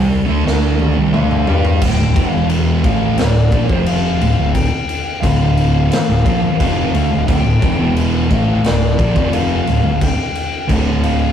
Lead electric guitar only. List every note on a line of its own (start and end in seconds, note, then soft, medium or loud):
1.13 1.82 F5 medium
1.82 2.30 G5 loud
2.30 2.46 F5 loud
2.85 3.20 F5 medium
3.19 3.72 D5 medium
3.72 3.89 C5 medium
3.86 4.53 F5 medium
4.54 5.20 G5 loud
5.21 5.89 F5 loud
5.90 6.55 F5 medium
6.59 7.27 F5 medium
7.27 7.92 G5 medium
8.31 8.66 F5 medium
8.66 9.36 D5 medium
9.33 9.97 F5 medium
10.04 10.66 G5 medium
11.03 11.32 F5 medium